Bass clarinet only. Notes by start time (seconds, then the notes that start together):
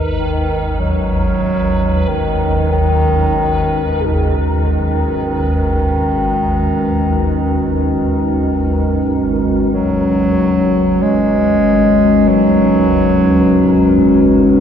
0.18 D#3
0.80 F#3
2.08 D#3
2.72 D#3
4.00 C#3
4.06 B2
4.13 C#3
4.62 D#3
9.73 F#3
11.02 G#3
12.28 F#3